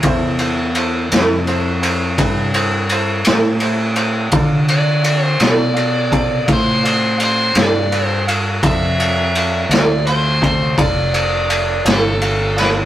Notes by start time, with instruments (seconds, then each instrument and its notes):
0.03 fingered electric bass E2, grand piano E4 A4 C5, kick, ride
0.39 grand piano E4 A4 C5, ride
0.75 grand piano E4 A4 C5, ride
1.11 fingered electric bass F2, grand piano E4 A4 B4, snare, ride
1.47 grand piano E4 A4 C5, ride
1.82 grand piano E4 A4 C5, ride
2.18 fingered electric bass G2, grand piano E4 A4 B4, kick, ride
2.54 grand piano E4 A4 C5, ride
2.89 grand piano E4 A4 C5, ride
3.24 fingered electric bass A2, grand piano E4 A4 C5, snare, ride
3.60 grand piano E4 A4 C5 E5, ride
3.96 grand piano E4 A4 C5, ride
4.31 fingered electric bass D3, grand piano F4 A4 D5, kick, ride
4.68 grand piano F4 A4 D5, overdriven electric guitar D5, ride
5.02 grand piano F4 A4 E5, ride
5.24 overdriven electric guitar C5
5.40 fingered electric bass B2, grand piano F4 A4 D5, snare, ride
5.44 overdriven electric guitar D5
5.74 grand piano F4 A4 D5, ride
6.11 grand piano F4 A4 C5, kick, ride
6.46 fingered electric bass A2, grand piano F4 A4 E5, kick, ride
6.52 overdriven electric guitar C5
6.82 grand piano F4 A4 D5, ride
7.17 grand piano F4 A4 D5, ride
7.24 overdriven electric guitar C5
7.55 fingered electric bass G2, grand piano F4 A4 D5, overdriven electric guitar D5, snare, ride
7.91 grand piano F4 A4 B4, ride
8.06 overdriven electric guitar C5
8.27 grand piano F4 A4 F5, ride
8.63 fingered electric bass F2, grand piano F4 A4 D5, overdriven electric guitar E5, kick, ride
8.99 grand piano F4 A4 D5, ride
9.35 grand piano F4 A4 D5, ride
9.69 fingered electric bass D2, grand piano F4 A4 D5, overdriven electric guitar D5, snare, ride
10.07 grand piano F4 A4 C5, overdriven electric guitar C5, ride
10.42 grand piano F4 A4 D5, kick, ride
10.78 fingered electric bass F1, grand piano F4 A4 D5, overdriven electric guitar D5, kick, ride
11.13 grand piano F4 A4 C5, ride
11.49 grand piano F4 A4 E5, ride
11.84 fingered electric bass G1, grand piano F4 A4 E5, overdriven electric guitar A4, snare, ride
12.21 grand piano F4 A4 E5, ride
12.57 grand piano F4 A4 D5, overdriven electric guitar B4, snare, ride